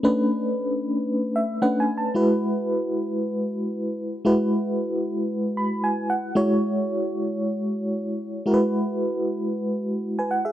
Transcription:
\new Staff \with { instrumentName = "FM electric piano" } { \time 4/4 \key fis \minor \tempo 4 = 114 << { r2 r8 e''8 \tuplet 3/2 { fis''8 gis''8 a''8 } | r1 | r2 r8 b''8 gis''8 fis''8 | r1 |
r2. r16 <b' gis''>16 fis''16 <gis' e''>16 | } \\ { <a cis' d' b'>2. <a cis' d' b'>4 | <gis e' fis' b'>1 | <gis e' fis' b'>1 | <gis e' fis' cis''>1 |
<gis e' fis' ais' b'>1 | } >> }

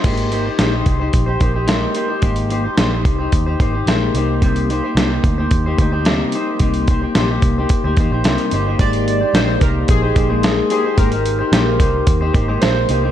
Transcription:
<<
  \new Staff \with { instrumentName = "Synth keys" } { \time 4/4 \key aes \lydian \tempo 4 = 110 r1 | r1 | r1 | r1 |
d''4 c''8 bes'8 aes'4. aes'8 | bes'2 r4 c''4 | }
  \new Staff \with { instrumentName = "Clean electric guitar" } { \time 4/4 \key aes \lydian <aes bes ees' g' c''>8 <bes ees' g' c''>16 <ees' g' c''>16 <aes bes ees' g' c''>16 <ees' g' c''>8 <ees' g' c''>8 <ees' g' c''>16 <bes ees' g' c''>16 <ees' g' c''>16 <aes bes ees' g' c''>8 <bes ees' g' c''>16 <ees' g' c''>16 | <aes bes ees' g' c''>8 <bes ees' g' c''>16 <ees' g' c''>16 <aes bes ees' g' c''>16 <ees' g' c''>8 <ees' g' c''>8 <ees' g' c''>16 <bes ees' g' c''>16 <ees' g' c''>16 <aes bes ees' g' c''>8 <bes ees' g' c''>8 | <c g bes ees' g' c''>8 <bes ees' g' c''>16 <bes ees' g' c''>16 <c g bes ees' g' c''>16 <bes ees' g' c''>8 <bes ees' g' c''>8 <bes ees' g' c''>16 <bes ees' g' c''>16 <bes ees' g' c''>16 <c g bes ees' g' c''>8 <bes ees' g' c''>8 | <c g bes ees' g' c''>8 <bes ees' g' c''>16 <bes ees' g' c''>16 <c g bes ees' g' c''>16 <bes ees' g' c''>8 <bes ees' g' c''>8 <bes ees' g' c''>16 <bes ees' g' c''>16 <bes ees' g' c''>16 <c g bes ees' g' c''>8 <bes ees' g' c''>16 <bes ees' g' c''>16 |
<aes bes ees' g' c''>8. <ees' g' c''>16 <aes bes ees' g' c''>8 <bes ees' g' c''>8. <ees' g' c''>16 <bes ees' g' c''>16 <aes bes ees' c''>8. <bes ees' g' c''>16 <ees' g' c''>16 | <aes bes ees' g' c''>16 <ees' g' c''>8 <ees' g' c''>16 <aes bes ees' g' c''>8 <bes ees' g' c''>8. <ees' g' c''>16 <bes ees' g' c''>16 <aes bes ees' g' c''>8. <bes ees' g' c''>16 <bes ees' g' c''>16 | }
  \new Staff \with { instrumentName = "Picked electric bass" } { \clef bass \time 4/4 \key aes \lydian aes,,4 bes,,8 c,8 bes,,8 bes,,4 r8 | aes,,4 bes,,8 c,8 ees,8 aes,,8 bes,,8 c,8~ | c,4 c,8 d,8 ees,8 d,4 r8 | c,4 bes,,8 c,8 r16 d,16 ees,16 bes,,16 c,16 r16 g,,8 |
aes,,4 bes,,8 c,8 bes,,8 bes,,4 r8 | aes,,4 bes,,8 c,8 ees,8 aes,,8 bes,,8 c,8 | }
  \new DrumStaff \with { instrumentName = "Drums" } \drummode { \time 4/4 <cymc hh bd>16 hh16 hh8 <hh sn>8 <hh bd>8 <hh bd>8 <hh bd>8 <hh sn>8 hh8 | <hh bd>16 hh16 hh8 <hh sn>8 <hh bd>8 <hh bd>8 <hh bd>8 <hh sn>8 hh8 | <hh bd>16 hh16 hh8 <hh sn>8 <hh bd>8 <hh bd>8 <hh bd>8 <hh sn>8 hh8 | <hh bd>16 hh16 <hh bd>8 <hh sn>8 <hh bd>8 <hh bd>8 <hh bd>8 <hh sn>16 hh16 hh8 |
<hh bd>16 hh16 hh8 <hh sn>8 <hh bd>8 <hh bd>8 <hh bd>8 <hh sn>8 hh8 | <hh bd>16 hh16 hh8 <hh sn>8 <hh bd>8 <hh bd>8 <hh bd>8 <hh sn>8 hh8 | }
>>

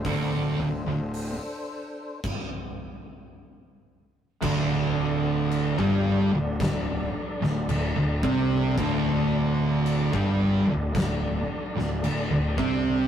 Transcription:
<<
  \new Staff \with { instrumentName = "Tonewheel organ" } { \time 4/4 \key c \dorian \tempo 4 = 55 <d' a' c''>2 r2 | <d' a' d''>1~ | <d' a' d''>1 | }
  \new Staff \with { instrumentName = "Distorted electric guitar" } { \clef bass \time 4/4 \key c \dorian <d, d>8 d,16 d,8 r2 r8. | <d, d>4~ <d, d>16 <g, g>8 d,16 d,8 r16 d,16 d,16 d,16 <c c'>8 | <d, d>4~ <d, d>16 <g, g>8 d,16 d,8 r16 d,16 d,16 d,16 <c c'>8 | }
  \new Staff \with { instrumentName = "Distorted electric guitar" } { \clef bass \time 4/4 \key c \dorian <d, d>8 d,16 d,8 r2 r8. | <d, d>4~ <d, d>16 <g, g>8 d,16 d,8 r16 d,16 d,16 d,16 <c c'>8 | <d, d>4~ <d, d>16 <g, g>8 d,16 d,8 r16 d,16 d,16 d,16 <c c'>8 | }
  \new Staff \with { instrumentName = "Overdriven electric guitar" } { \clef bass \time 4/4 \key c \dorian r1 | <d, d>4~ <d, d>16 <g, g>8 d,16 d,8 r16 d,16 d,16 d,16 <c c'>8 | <d, d>4~ <d, d>16 <g, g>8 d,16 d,8 r16 d,16 d,16 d,16 <c c'>8 | }
  \new Staff \with { instrumentName = "Fingered electric bass" } { \clef bass \time 4/4 \key c \dorian d,,8 d,,16 d,,8 r2 r8. | d,,4~ d,,16 g,,8 d,,16 d,,8 r16 d,,16 d,,16 d,,16 c,8 | d,,4~ d,,16 g,,8 d,,16 d,,8 r16 d,,16 d,,16 d,,16 c,8 | }
  \new DrumStaff \with { instrumentName = "Drums" } \drummode { \time 4/4 <hho bd>4 hho4 <cymc bd>4 r4 | <cymc bd>4 cymc16 bd8. <cymc bd sn>8. sn16 cymc8 bd8 | <cymc bd>4 cymc16 bd8. <cymc bd sn>8. sn16 cymc8 bd8 | }
>>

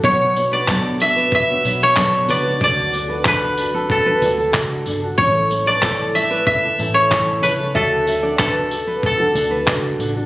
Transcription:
<<
  \new Staff \with { instrumentName = "Koto" } { \time 4/4 \key d \major \tempo 4 = 93 cis''8. d''8. e''8 e''8. cis''8. d''8 | d''4 b'4 a'4 r4 | cis''8. d''8. e''8 e''8. cis''8. b'8 | a'4 a'4 a'4 r4 | }
  \new Staff \with { instrumentName = "Steel-string acoustic guitar" } { \time 4/4 \key d \major cis''8 r16 b'16 a'16 r8 b'8. r8 a'16 r16 b'16 r16 | d''8 r16 b'16 a'16 r8 a'16 r16 b'16 r16 a'16 r4 | cis''8 r16 b'16 a'16 r8 b'8. r8 a'16 r16 cis''16 r16 | e''8 r16 d''16 b'16 r8 b'16 r16 a'16 r16 b'16 r4 | }
  \new Staff \with { instrumentName = "Nylon-string guitar" } { \time 4/4 \key d \major <b, fis b d' fis' cis''>8 <b d' fis' cis''>16 <b d' fis' cis''>16 <b, fis b d' fis'>8 <b d' fis' cis''>8. <b d' fis' cis''>16 <b d' fis' cis''>8 <b, fis b d' fis' cis''>8 <b d' fis' cis''>16 <b d' fis' cis''>16 | <d d' fis' a'>8 <d d' fis' a'>16 <d' fis' a'>16 <d d' fis' a'>8 <d d' fis' a'>8. <d' fis' a'>16 <d d' fis' a'>8 <d' fis' a'>8 <d d' fis' a'>16 <d' fis' a'>16 | <a, e a cis' e' a'>8 <a cis' e' a'>16 <a cis' e' a'>16 <a, e a e' a'>8 <a cis' e' a'>8. <a cis' e' a'>16 <a cis' e' a'>8 <a, e a cis' e' a'>8 <a cis' e' a'>16 <a cis' e' a'>16 | <d d' fis' a'>8 <d d' fis' a'>16 <d' fis' a'>16 <d d' fis' a'>8 <d d' fis' a'>8. <d' fis' a'>16 <d d' fis' a'>8 <d' fis' a'>8 <d d' fis' a'>16 <d' fis' a'>16 | }
  \new Staff \with { instrumentName = "Fingered electric bass" } { \clef bass \time 4/4 \key d \major b,,2~ b,,8 b,,4 cis,8 | d,2~ d,8 d,8 cis,8 g,,8 | a,,2~ a,,8 a,,4 cis,8 | d,2~ d,8 d,8 cis,8 a,,8 | }
  \new DrumStaff \with { instrumentName = "Drums" } \drummode { \time 4/4 bd8 tamb8 <hc bd>8 tamb8 bd8 tamb8 <hc bd>8 tamb8 | bd8 tamb8 <hc bd>8 tamb8 bd8 tamb8 <hc bd>8 tamb8 | bd8 tamb8 <hc bd>8 tamb8 bd8 tamb8 <hc bd>8 tamb8 | bd8 tamb8 <hc bd>8 tamb8 bd8 tamb8 <hc bd>8 tamb8 | }
>>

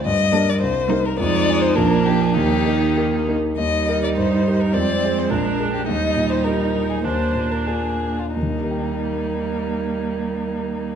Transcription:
<<
  \new Staff \with { instrumentName = "Violin" } { \time 2/4 \key ees \major \tempo 4 = 100 ees''8. d''16 c''8. bes'16 | d''8. c''16 bes'8 g'16 aes'16 | g'4 r4 | ees''8. d''16 c''8. bes'16 |
d''8. c''16 bes'8. g'16 | ees''8. c''16 bes'8. aes'16 | c''8. bes'16 aes'8. f'16 | ees'2~ |
ees'2 | }
  \new Staff \with { instrumentName = "Grand piano" } { \time 2/4 \key ees \major g,8 <d' bes'>8 c,8 <ees' bes'>8 | f,8 <ees' aes'>8 bes,,8 <d' bes'>8 | ees,8 <ees' bes'>8 <g' bes'>8 <ees' bes'>8 | ees,8 <g' bes'>8 g,8 <g' bes'>8 |
f,8 <aes' c''>8 bes,,8 <aes' bes'>8 | ees,8 bes,8 <ees' g' bes'>8 ees'8 | ees,8 bes,8 <d' f' bes'>8 d'8 | <ees, ees ees' g' bes' g''>2~ |
<ees, ees ees' g' bes' g''>2 | }
  \new Staff \with { instrumentName = "Violin" } { \time 2/4 \key ees \major r8 d'8 r8 ees'8 | ees'4 d'4 | ees'4. r8 | r2 |
r2 | r2 | r2 | r2 |
r2 | }
  \new Staff \with { instrumentName = "Viola" } { \time 2/4 \key ees \major r8 bes8 r8 bes8 | aes4 bes4 | bes4. r8 | ees'2 |
c'4 d'4 | ees'2 | d'4. r8 | bes2~ |
bes2 | }
  \new Staff \with { instrumentName = "Cello" } { \clef bass \time 2/4 \key ees \major r8 g8 r8 g8 | f4 f4 | ees4. r8 | g2 |
aes2 | g2 | bes4. r8 | g2~ |
g2 | }
>>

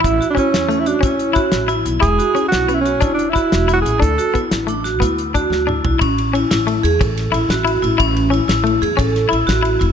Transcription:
<<
  \new Staff \with { instrumentName = "Alto saxophone" } { \time 12/8 \key a \major \tempo 4. = 121 e'8. d'16 cis'4~ cis'16 e'16 d'8 cis'2 r4 | gis'4. fis'8. e'16 cis'4 d'8 e'4~ e'16 fis'16 gis'8 | a'4 r1 r4 | r1. |
r1. | }
  \new Staff \with { instrumentName = "Vibraphone" } { \time 12/8 \key a \major r8 fis'8 e'4 cis'8 fis'8 e'4 fis'4 e'8 e'8 | r8 fis'8 e'4 cis'8 fis'8 e'4 fis'4 e'8 e'8 | r8 fis'8 e'4 d'8 fis'8 e'4 fis'4 e'8 e'8 | cis'4 e'8 e'4 gis'8 a'4 e'8 fis'4 e'8 |
cis'4 e'8 e'4 gis'8 a'4 e'8 fis'4 e'8 | }
  \new Staff \with { instrumentName = "Clean electric guitar" } { \time 12/8 \key a \major e'4 cis'4 a4 cis'4 e'4 e'4 | e'4 cis'4 b4 d'4 e'4 e'4 | d'4 b4 a4 b4 d'4 d'4 | r4 cis'4 a4 r4 e'4 e'4 |
e'4 cis'4 a4 cis'4 e'4 e'4 | }
  \new Staff \with { instrumentName = "Upright bass" } { \clef bass \time 12/8 \key a \major a,,8 r4 e,4. a,,4. a,,4 b,,8 | e,,8 r4 b,,4. e,,4. e,,4 a,,8 | d,8 r4 a,,4. d,4. d,4 b,,8 | a,,4. a,,4 e,8 a,,4 a,,8 a,,4 a,,8 |
a,,4. a,,4 e,8 a,,4 a,,8 a,,4 f,,8 | }
  \new DrumStaff \with { instrumentName = "Drums" } \drummode { \time 12/8 <hh bd>8 hh8 <hh bd>8 <hh sn>8 hh8 hh8 <hh bd>8 hh8 <hh bd>8 <hh sn>8 hh8 hh8 | <hh bd>8 hh8 hh8 <hh sn>8 hh8 hh8 <hh bd>8 hh8 <hh bd>8 <hh sn>8 hh8 hh8 | <hh bd>8 hh8 <hh bd>8 <hh sn>8 hh8 <hh sn>8 <hh bd>8 hh8 <hh bd>8 sn8 toml8 tomfh8 | <bd cymr>8 cymr8 cymr8 <cymr sn>8 cymr8 cymr8 <bd cymr>8 <cymr sn>8 cymr8 <cymr sn>8 cymr8 cymr8 |
<bd cymr>8 cymr8 cymr8 <cymr sn>8 cymr8 cymr8 <bd cymr>8 <cymr sn>8 cymr8 <cymr sn>8 cymr8 <bd cymr>8 | }
>>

